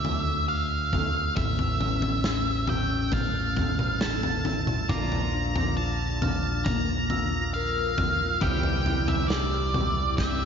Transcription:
Already playing: fingered electric bass D2, clean electric guitar A2 D3, lead electric guitar E5
0.05 clean electric guitar A3, glockenspiel E6, floor tom
0.49 lead electric guitar F5
0.93 clean electric guitar A3, glockenspiel F7, kick, floor tom
1.36 fingered electric bass A1, clean electric guitar A2, lead electric guitar E5, kick, floor tom
1.59 floor tom
1.81 clean electric guitar C#4, floor tom
2.02 floor tom
2.24 glockenspiel E6, snare
2.67 clean electric guitar C#4, lead electric guitar G5, floor tom, mid tom
3.12 clean electric guitar A3, lead electric guitar F5, glockenspiel A6, kick, floor tom, mid tom
3.56 kick, floor tom
3.79 mid tom
4.01 clean electric guitar A4, lead electric guitar A5, glockenspiel A6, snare
4.23 floor tom
4.45 clean electric guitar E4, floor tom
4.67 mid tom
4.89 fingered electric bass A#1, clean electric guitar A#2, pedal steel guitar D3 F3 A#3 D4 F4, lead electric guitar A#5, glockenspiel D6, kick, floor tom
5.12 floor tom
5.35 clean electric guitar D4
5.56 floor tom
5.77 clean electric guitar F4, lead electric guitar A5
6.22 clean electric guitar D4, glockenspiel F6, floor tom, mid tom
6.65 clean electric guitar A#3, lead electric guitar A#5, kick, floor tom, mid tom
7.10 clean electric guitar F4, glockenspiel E6, floor tom
7.54 clean electric guitar A#4, lead electric guitar F5
7.98 clean electric guitar F4, glockenspiel F6, kick, floor tom
8.41 fingered electric bass C2, pedal steel guitar C3 E3 G3 E4 G4, clean electric guitar C3, lead electric guitar G5, kick, floor tom
8.63 floor tom
8.86 clean electric guitar E4, floor tom
9.08 lead electric guitar E5, floor tom
9.28 clean electric guitar G4, lead electric guitar D5, glockenspiel E6, snare
9.74 clean electric guitar E4, floor tom, mid tom
10.17 clean electric guitar C4, lead electric guitar E5, glockenspiel G6, kick, snare

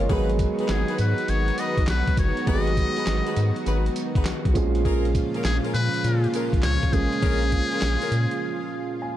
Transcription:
Already playing: analog synth pad G#3, grand piano D#5 F5
0.00 grand piano A#4 C#5
0.09 analog synth bass G#1, analog synth pad D#3 F#3 B3 F#4, grand piano F#3 G#3 B3 D#4 G#4, horn section D#4 F#4 G#4 B4, kick, closed hi-hat
0.29 closed hi-hat
0.39 kick, closed hi-hat, tambourine
0.59 horn section D#4 F#4 G#4 B4, closed hi-hat
0.68 analog synth bass G#1, muted trumpet G#4, snare, clap, closed hi-hat, tambourine
0.88 horn section D#4 F#4 G#4 B4, closed hi-hat
0.98 analog synth bass G#2, muted trumpet B4, closed hi-hat, tambourine
1.18 closed hi-hat
1.28 analog synth bass G#1, muted trumpet C#5, closed hi-hat, tambourine
1.48 closed hi-hat
1.58 horn section D#4 F#4 G#4 B4, muted trumpet D#5, closed hi-hat, tambourine
1.78 analog synth bass B1, kick, closed hi-hat
1.87 analog synth bass B1, muted trumpet B4, snare, clap, closed hi-hat, tambourine
2.08 kick, closed hi-hat
2.17 analog synth bass G1, muted trumpet C#5, kick, closed hi-hat, tambourine
2.37 closed hi-hat
2.46 analog synth bass G#1, grand piano F#3 G#3 B3 D#4 G4, horn section D#4 F#4 G#4 B4, muted trumpet D#5, kick, closed hi-hat
2.55 grand piano G#4
2.67 closed hi-hat
2.77 kick, closed hi-hat, tambourine
2.96 horn section D#4 F#4 G#4 B4, closed hi-hat
3.06 analog synth bass G#1, snare, clap, closed hi-hat, tambourine
3.26 horn section D#4 F#4 G#4 B4, closed hi-hat
3.36 analog synth bass G#2, closed hi-hat, tambourine
3.56 closed hi-hat
3.66 analog synth bass G#1, horn section D#4 F#4 G#4 B4, closed hi-hat, tambourine
3.86 closed hi-hat
3.96 closed hi-hat, tambourine
4.15 analog synth bass G#1, horn section D#4 F#4 G#4 B4, kick, closed hi-hat
4.25 analog synth bass B1, snare, clap, closed hi-hat, tambourine
4.45 analog synth bass B1, kick, closed hi-hat
4.54 analog synth bass A#1, grand piano A#2 F3 G#3 C#4 G#4, analog synth pad A#2 C#3 F3 F4, kick, closed hi-hat, tambourine
4.75 closed hi-hat
4.85 horn section C#4 F4 G#4 A#4, kick, closed hi-hat
5.05 closed hi-hat
5.15 kick, closed hi-hat, tambourine
5.34 horn section C#4 F4 G#4 A#4, closed hi-hat
5.44 analog synth bass A#1, muted trumpet G#4, snare, clap, closed hi-hat, tambourine
5.64 horn section C#4 F4 G#4 A#4, closed hi-hat
5.74 analog synth bass A#2, muted trumpet B4, closed hi-hat, tambourine
5.94 closed hi-hat
6.04 analog synth bass A#2, closed hi-hat, tambourine
6.24 closed hi-hat
6.33 horn section C#4 F4 G#4 A#4, closed hi-hat, tambourine
6.53 analog synth bass A#1, kick, closed hi-hat
6.63 analog synth bass C#2, muted trumpet C#5, snare, clap, closed hi-hat, tambourine
6.83 kick, closed hi-hat
6.92 analog synth bass A1, grand piano F3 G#3 A#3 C#4 G#4, muted trumpet G#4, kick, closed hi-hat, tambourine
7.13 closed hi-hat
7.22 analog synth bass A#1, horn section C#4 F4 G#4 A#4, kick, closed hi-hat
7.42 closed hi-hat
7.52 kick, closed hi-hat, tambourine
7.72 horn section C#4 F4 G#4 A#4, closed hi-hat
7.81 analog synth bass A#1, snare, clap, closed hi-hat, tambourine
8.02 horn section C#4 F4 G#4 A#4, closed hi-hat
8.12 analog synth bass A#2, closed hi-hat, tambourine
8.31 closed hi-hat
9.02 grand piano G#5

